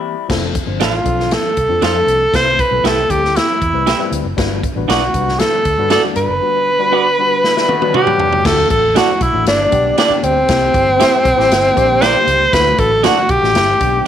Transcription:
Already playing: E3 G3 A#3 C4 E4 G4
0.28 F1 F3 C4 D4 A4, kick, snare, crash
0.55 kick, closed hi-hat
0.66 G1 F3 C4 D4 C5
0.80 A1 D4 F4 A4 C5 F5, snare, closed hi-hat
1.04 B1 F3 C4 D4 A4, kick, closed hi-hat
1.20 snare
1.31 A4, snare, closed hi-hat
1.57 C2, kick, closed hi-hat
1.69 F2 F3 C4 D4 F4
1.82 F2 D4 A4 C5 F5, snare, closed hi-hat
1.94 F3 C4 D4 A4
2.07 C2, closed hi-hat
2.32 C2 G3 C4 E4 B4 C5, kick, snare, closed hi-hat
2.59 B4, kick, closed hi-hat
2.71 B1 G3 C4 E4 A4
2.84 C2 E4 G4 A4 B4 E5, snare, closed hi-hat
3.09 D2 G3 C4 E4 G4 A4, kick, closed hi-hat
3.25 snare
3.36 E4, snare, closed hi-hat
3.62 E2, kick, closed hi-hat
3.73 C2 G3 C4 E4 B4
3.86 E4 G4 B4 E5, snare, closed hi-hat
3.98 G3 C4 E4 B4
4.12 D2, closed hi-hat
4.25 F#1
4.37 G1 D3 G3 B3 D4 F#4 B4, kick, snare, closed hi-hat
4.63 kick, closed hi-hat
4.75 A1 G3 D4 F#4 B4
4.88 B1 D4 F#4 B4 D5, snare, closed hi-hat
5.14 C2 G3 D4 F#4 B4, kick, closed hi-hat
5.29 snare
5.39 A4, snare, closed hi-hat
5.65 D2, kick, closed hi-hat
5.78 G2 G3 D4 F#4 B4
5.90 D4 F#4 A4 B4 D5, snare, closed hi-hat
6.03 G3 D4 F#4 D5
6.16 G2 B4, closed hi-hat
6.29 F#1
6.41 G3 D4 F#4 B4
6.79 G3 D4 F#4 B4
6.92 D4 F#4 B4 D5
7.18 G3 D4 F#4 B4
7.44 snare
7.56 G3 E4, snare
7.68 A3 F#4, high tom
7.81 F#3 G3 D4 F#4 B4, high tom
7.94 D4 F#4 G4 B4 D5, mid tom
8.06 G3 D4 F#4 B4, mid tom
8.20 floor tom
8.33 floor tom
8.44 D2 D3 F#3 A3 D4 F4 F#4 A4, kick, snare, crash
8.52 F#4
8.70 A1 A4, kick, closed hi-hat
8.94 A3 D4 E4 F#4 A4 D5, snare, closed hi-hat
9.21 B1 E4, kick, closed hi-hat
9.33 A1 A3 D4 F#4
9.46 G1 G3 B3 D4 G4, snare, closed hi-hat
9.71 B1 B3 D4 G4, kick, closed hi-hat
9.98 D4 G4 B4 D5, snare, closed hi-hat
10.09 B3 D4 G4, muted fingered electric bass stroke
10.23 D2 C4, closed hi-hat
10.48 C2 E3 C4 E4 G4, kick, snare, closed hi-hat
10.74 G1, kick, closed hi-hat
10.98 C4 E4 G4 C5 E5, snare, closed hi-hat
11.25 B1, kick, closed hi-hat
11.37 A1 C4 E4 G4, snare
11.50 G1 D3 G3 A#3 G4, snare, closed hi-hat
11.75 A#1 A#3 D4 G4, kick, closed hi-hat
12.01 D4 G4 A#4 C5 D5, snare, closed hi-hat
12.14 A#3 D4 G4
12.27 C#2, closed hi-hat
12.52 D2 F#3 A3 D4 E4 F#4 B4, kick, snare, closed hi-hat
12.60 F#4
12.78 A1 A4, kick, closed hi-hat
13.03 A3 D4 F#4 A4 D5, snare, closed hi-hat
13.29 B1 G4, kick, closed hi-hat
13.42 A1 A3 D4 F#4, snare
13.55 G1 G3 B3 G4, snare, closed hi-hat
13.80 B1 B3 D4 G4, kick, closed hi-hat

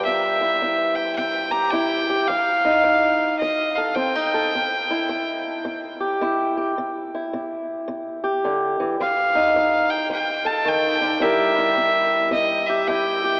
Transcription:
Already playing: G3
0.05 C3 E5
0.41 E4
0.62 C3
0.95 G5
1.16 C3 G5
1.51 G4 A#5
1.70 C3 E4 G5
2.10 G4
2.28 F3 F5
2.65 D#4
2.84 F3
3.39 F3 D#5
3.76 A4 F5
3.95 F3 C4 G5
4.15 D#4
4.34 A4
4.55 C3
4.91 E4
5.09 C3
5.65 C3
6.00 G4
6.21 C3 E4
6.57 G4
6.78 C3
7.15 E4
7.33 C3
7.88 C3
8.24 G4
8.45 D3
8.80 E3
9.00 F3 F5
9.35 D#4
9.56 F3
9.90 G5
10.10 F3 G5
10.45 A4 A5
10.65 D#3 G5
11.01 D3
11.20 C3 G3 E4 G4 A#4 E5
11.58 E4
11.77 C3
12.31 C3 D#5
12.67 G4 E5
12.88 C3 E4 G5
13.24 G4

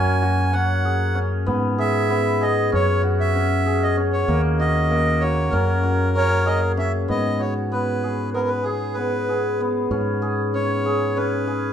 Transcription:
Already playing: F#2 A#3 C#4 F#4 G#4 G#5
0.22 F#4
0.52 C#4 F#5
0.85 G#4
1.15 C#4
1.46 G#2 B3
1.78 G#4 E5
2.10 B3
2.41 G#4 D#5
2.72 F#2 C#4 C#5
3.03 F#4
3.20 E5
3.35 C#4
3.66 G#4
3.83 D#5
3.97 C#4
4.13 C#5
4.28 D#2 A#3
4.59 F#4 D#5
4.91 A#3
5.20 F#4 C#5
5.50 F#2 C#4 A#4
5.83 F#4
6.16 C#4 C#5
6.46 G#4 D#5
6.77 C#4 E5
7.08 G#2 B3 D#5
7.40 F#4 C#5
7.72 B3 B4
8.03 G#4
8.33 B3 A#4
8.48 B4
8.63 G#4
8.94 B3 B4
9.29 G#4
9.60 B3
9.91 G#2 C#4
10.22 G#4
10.54 C#4 C#5
10.85 G#4
11.16 C#4 B4
11.47 G#4

